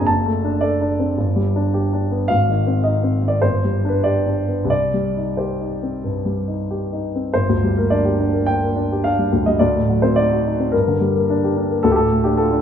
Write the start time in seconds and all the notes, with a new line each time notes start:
Already playing: F1 G#3 C4 D4 G#4 G#5 A#5 C6
0.01 F#1
0.06 A5
0.26 A3
0.44 D4
0.61 A4 D5
0.81 D4
0.99 C4
1.18 G1
1.36 G3
1.56 D4
1.74 G4
1.93 D4
2.11 B3
2.28 G#1 F5
2.49 D#3
2.67 C4
2.84 D#4 D#5
3.03 C4
3.23 D#3
3.28 D5
3.42 G1 C5
3.64 G3
3.85 D4
3.89 B4
4.04 G4 D5
4.27 D4
4.48 B3
4.65 C2
4.70 D5
4.94 G3
5.17 D#4
5.37 G4 C5
5.61 D#4
5.83 C4
6.04 G2
6.25 G3
6.48 D#4
6.71 G4
6.93 D#4
7.15 C4
7.34 G1 C5
7.49 D2
7.64 G3
7.77 A#3 A#4
7.90 D4 D5
8.05 G4
8.19 D4
8.33 A#3
8.46 D4 G5
8.62 A#3
8.76 D4
8.92 G4
9.04 D4 F5
9.19 G3
9.33 D2
9.46 G3 D#5
9.59 D2 D5
9.76 A2
9.89 F#3
10.02 C4 C5
10.16 D#4 D5
10.33 F#4
10.46 D#4
10.60 C4
10.72 G2 A#4
10.88 D3
11.01 G3
11.16 A#3
11.30 D4
11.44 G4
11.57 D4
11.71 A#3
11.83 D2 A4
11.92 G4
11.96 A2 A4
12.12 A3
12.24 D4 G4
12.37 F4 A4
12.53 D4